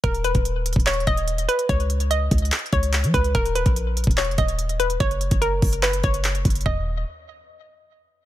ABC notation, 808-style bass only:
X:1
M:4/4
L:1/16
Q:1/4=145
K:Cblyd
V:1 name="808-style bass" clef=bass
^D,,,3 D,,,4 D,,,3 D,,,4 z2 | D,,6 D,,2 z2 D,,3 F, D,,2 | E,,,3 B,,,4 E,,,2 F,,, E,,,6 | G,,,3 G,,,3 G,,,4 G,,,4 G,,,2 |
E,,,4 z12 |]